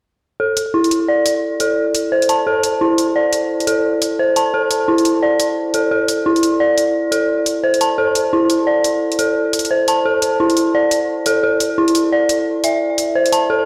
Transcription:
0.40 synth bell A4
0.57 closed hi-hat
0.74 synth bell E4
0.84 closed hi-hat
0.91 closed hi-hat
1.08 synth bell D5
1.26 closed hi-hat
1.60 synth bell A4, closed hi-hat
1.95 closed hi-hat
2.12 synth bell C5
2.22 closed hi-hat
2.29 synth bell A5, closed hi-hat
2.47 synth bell A4
2.63 closed hi-hat
2.81 synth bell E4
2.98 closed hi-hat
3.16 synth bell D5
3.33 closed hi-hat
3.60 closed hi-hat
3.67 synth bell A4, closed hi-hat
4.02 closed hi-hat
4.19 synth bell C5
4.36 synth bell A5, closed hi-hat
4.54 synth bell A4
4.71 closed hi-hat
4.88 synth bell E4
4.98 closed hi-hat
5.05 closed hi-hat
5.23 synth bell D5
5.40 closed hi-hat
5.74 synth bell A4, closed hi-hat
5.91 synth bell A4
6.08 closed hi-hat
6.26 synth bell E4
6.36 closed hi-hat
6.43 closed hi-hat
6.60 synth bell D5
6.78 closed hi-hat
7.12 synth bell A4, closed hi-hat
7.46 closed hi-hat
7.64 synth bell C5
7.74 closed hi-hat
7.81 synth bell A5, closed hi-hat
7.98 synth bell A4
8.15 closed hi-hat
8.33 synth bell E4
8.50 closed hi-hat
8.67 synth bell D5
8.84 closed hi-hat
9.12 closed hi-hat
9.19 synth bell A4, closed hi-hat
9.53 closed hi-hat
9.59 closed hi-hat
9.65 closed hi-hat
9.71 synth bell C5
9.88 synth bell A5, closed hi-hat
10.05 synth bell A4
10.22 closed hi-hat
10.40 synth bell E4
10.50 closed hi-hat
10.57 closed hi-hat
10.75 synth bell D5
10.91 closed hi-hat
11.26 synth bell A4, closed hi-hat
11.43 synth bell A4
11.60 closed hi-hat
11.78 synth bell E4
11.88 closed hi-hat
11.95 closed hi-hat
12.12 synth bell D5
12.29 closed hi-hat
12.64 synth bell E5, closed hi-hat
12.98 closed hi-hat
13.15 synth bell C5
13.26 closed hi-hat
13.32 synth bell A5, closed hi-hat
13.50 synth bell A4

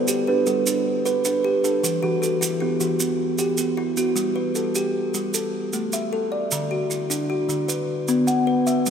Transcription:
Already playing: kalimba A4 B4 C5
0.08 kalimba G4, maracas
0.27 kalimba D4 G4 B4
0.47 kalimba G3 A4, maracas
0.67 kalimba D4, maracas
1.06 kalimba B4, maracas
1.25 kalimba D4 B4, maracas
1.44 kalimba G4
1.64 kalimba D4 A4, maracas
1.84 kalimba E3, maracas
2.03 kalimba E3 F#4 G4
2.22 kalimba F#4 A4, maracas
2.41 kalimba E4, maracas
2.60 kalimba B3 E4 G4
2.80 kalimba E3 F#4, maracas
3.00 kalimba B3, maracas
3.38 kalimba G4, maracas
3.58 kalimba B3 G4, maracas
3.77 kalimba E4
3.97 kalimba B3 F#4, maracas
4.16 kalimba G3, maracas
4.36 kalimba B4
4.55 kalimba A4, maracas
4.75 kalimba G4, maracas
5.14 kalimba G3, maracas
5.34 kalimba A4, maracas
5.73 kalimba A3, maracas
5.93 kalimba E5, maracas
6.13 kalimba A4
6.32 kalimba D5
6.51 kalimba D3, maracas
6.71 kalimba F#4
6.90 kalimba E4, maracas
7.10 kalimba D4, maracas
7.30 kalimba F#4
7.49 kalimba D3, maracas
7.68 kalimba B4, maracas
8.08 kalimba B3, maracas
8.27 kalimba F#5, maracas
8.47 kalimba B4
8.67 kalimba E5, maracas
8.86 kalimba G3, maracas

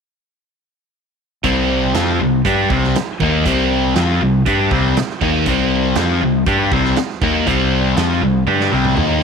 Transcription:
1.43 fingered electric bass C2, distorted electric guitar C3 G3 C4, kick, closed hi-hat
1.94 fingered electric bass F2, distorted electric guitar F3 C4 F4, snare, closed hi-hat
2.19 fingered electric bass C2, distorted electric guitar C3 G3
2.45 fingered electric bass G2, distorted electric guitar G3 D4 G4, kick, closed hi-hat
2.70 fingered electric bass C2, distorted electric guitar C3 G3 C4, kick
2.84 snare
2.95 snare, closed hi-hat
3.19 fingered electric bass D#2, distorted electric guitar D#3 A#3 D#4, kick
3.45 fingered electric bass C2, distorted electric guitar C3 G3 C4, kick, closed hi-hat
3.95 fingered electric bass F2, distorted electric guitar F3 C4 F4, snare, closed hi-hat
4.21 fingered electric bass C2, distorted electric guitar C3 G3
4.46 fingered electric bass G2, distorted electric guitar G3 D4 G4, kick, closed hi-hat
4.71 fingered electric bass C2, distorted electric guitar C3 G3 C4, kick
4.97 snare, closed hi-hat
5.10 snare
5.21 fingered electric bass D#2, distorted electric guitar D#3 A#3 D#4, kick
5.46 fingered electric bass C2, distorted electric guitar C3 G3, kick, closed hi-hat
5.50 distorted electric guitar C4
5.95 fingered electric bass F2, distorted electric guitar F3 C4 F4, snare, closed hi-hat
6.22 fingered electric bass C2, distorted electric guitar C3 G3
6.46 fingered electric bass G2, distorted electric guitar G3 D4 G4, kick, closed hi-hat
6.71 fingered electric bass C2, distorted electric guitar C3 G3 C4, kick
6.85 snare
6.96 snare, closed hi-hat
7.10 snare
7.21 fingered electric bass D#2, distorted electric guitar D#3 A#3 D#4, kick
7.46 fingered electric bass C2, distorted electric guitar C3 G3 C4, kick, closed hi-hat
7.96 fingered electric bass F2, distorted electric guitar F3 C4 F4, snare, closed hi-hat
8.21 fingered electric bass C2, distorted electric guitar C3 G3
8.46 fingered electric bass G2, distorted electric guitar G3 D4 G4, high tom
8.60 snare
8.71 fingered electric bass C2, distorted electric guitar C3 G3 C4
8.84 mid tom
8.97 fingered electric bass D#2, distorted electric guitar D#3 A#3 D#4, mid tom

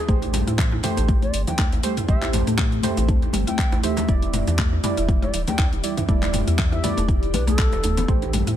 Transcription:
Already playing: bansuri G#4
0.08 sub bass A1, ambient pad A3 C4 G4, synth stab A3 G4 C5, synth pluck A3, kick, high conga, shaker
0.22 closed hi-hat, muted conga, djembe tone
0.33 synth pluck G3, mid tom, open hi-hat, djembe slap, high conga, shaker
0.47 sub bass A2, synth pluck E4, closed hi-hat, djembe tone, shaker
0.58 synth pluck E3, kick, clap, shaker
0.72 synth pluck E4, djembe tone
0.83 synth pluck E3, synth stab A3 G4 C5, mid tom, open hi-hat, djembe slap, high conga, shaker
0.97 sub bass A1, synth pluck A3, closed hi-hat, muted conga, djembe tone, shaker
1.09 kick, high conga, low conga, shaker
1.22 bansuri D5, closed hi-hat, djembe tone, high conga
1.33 sub bass G1, open hi-hat, muted conga, shaker
1.47 synth pluck E3, bansuri G5, closed hi-hat, djembe tone, low conga, shaker
1.59 synth pluck A3, kick, clap, djembe bass, shaker
1.72 sub bass A1, closed hi-hat, muted conga, djembe tone
1.83 synth pluck G3, synth stab A3 G4 C5, open hi-hat, shaker
1.97 synth pluck E4, closed hi-hat, mid tom, djembe tone, shaker
2.08 sub bass A1, synth pluck E3, synth stab A3 G4 C5, bansuri E5, kick, high conga, shaker
2.22 synth pluck E4, clap, closed hi-hat, muted conga, djembe tone
2.33 synth pluck E3, mid tom, open hi-hat, djembe slap, high conga, shaker
2.47 sub bass A2, synth pluck A3, closed hi-hat, djembe tone, shaker
2.58 kick, clap, shaker
2.72 closed hi-hat, djembe tone
2.83 synth stab A3 G4 C5, mid tom, open hi-hat, djembe slap, high conga, shaker
2.97 sub bass A1, synth pluck E3, closed hi-hat, muted conga, djembe tone, shaker
3.08 synth pluck A3, kick, djembe bass, shaker
3.22 closed hi-hat, djembe tone
3.33 sub bass G1, synth pluck G3, open hi-hat, muted conga, high conga, low conga, shaker
3.47 synth pluck E4, bansuri G5, closed hi-hat, djembe tone, high conga, shaker
3.58 synth pluck E3, kick, clap, shaker
3.72 sub bass A1, synth pluck E4, closed hi-hat, muted conga, djembe slap, djembe tone
3.83 synth pluck E3, synth stab A3 G4 C5, bansuri E5, open hi-hat, djembe bass, shaker
3.97 synth pluck A3, closed hi-hat, djembe slap, djembe tone, low conga, shaker
4.08 sub bass E1, ambient pad E3 B3 E4, synth stab G3 E4 D5, kick, high conga, shaker
4.22 closed hi-hat, muted conga, djembe tone
4.33 mid tom, open hi-hat, djembe slap, high conga, shaker
4.47 sub bass E2, synth pluck E3, closed hi-hat, djembe tone, shaker
4.59 synth pluck A3, kick, clap, muted conga, shaker
4.73 djembe tone
4.84 synth pluck G3, synth stab G3 E4 D5, mid tom, open hi-hat, djembe slap, high conga, shaker
4.97 sub bass E1, synth pluck E4, closed hi-hat, muted conga, djembe tone, shaker
5.08 synth pluck E3, kick, high conga, low conga, shaker
5.22 synth pluck E4, bansuri D5, closed hi-hat, high conga, djembe tone
5.34 sub bass D1, synth pluck E3, open hi-hat, muted conga, shaker
5.47 synth pluck A3, bansuri G5, closed hi-hat, djembe tone, low conga, shaker
5.59 kick, clap, djembe bass, shaker
5.72 sub bass E1, closed hi-hat, muted conga, djembe tone
5.84 synth stab G3 E4 D5, open hi-hat, shaker
5.97 synth pluck E3, closed hi-hat, mid tom, djembe tone, shaker
6.08 sub bass E1, synth stab G3 E4 D5, synth pluck A3, ambient pad D4, kick, high conga, shaker
6.22 clap, closed hi-hat, muted conga, djembe tone, low conga
6.33 synth pluck G3, mid tom, open hi-hat, djembe slap, high conga, shaker
6.47 sub bass E2, synth pluck E4, closed hi-hat, djembe tone, shaker
6.58 synth pluck E3, kick, clap, shaker
6.72 synth pluck E4, bansuri E5, closed hi-hat, djembe tone
6.83 synth pluck E3, synth stab G3 E4 D5, mid tom, open hi-hat, djembe slap, high conga, shaker
6.97 sub bass E1, synth pluck A3, closed hi-hat, muted conga, djembe tone, shaker
7.08 kick, djembe bass, shaker
7.23 closed hi-hat, djembe tone
7.33 sub bass B1, bansuri B4, open hi-hat, muted conga, high conga, low conga, shaker
7.47 synth pluck A3, bansuri A4, closed hi-hat, djembe tone, high conga, shaker
7.58 synth pluck A4, kick, clap, shaker
7.72 sub bass E1, closed hi-hat, muted conga, djembe slap, djembe tone
7.84 synth pluck A3, open hi-hat, djembe bass, shaker
7.97 synth pluck B3, closed hi-hat, djembe slap, djembe tone, low conga, shaker
8.08 sub bass A1, synth pluck A3, synth stab A3 G4 C5, kick, high conga, shaker
8.22 closed hi-hat, muted conga, djembe tone
8.33 synth pluck G3, mid tom, open hi-hat, djembe slap, high conga, shaker
8.47 sub bass A2, synth pluck E4, closed hi-hat, djembe tone, shaker

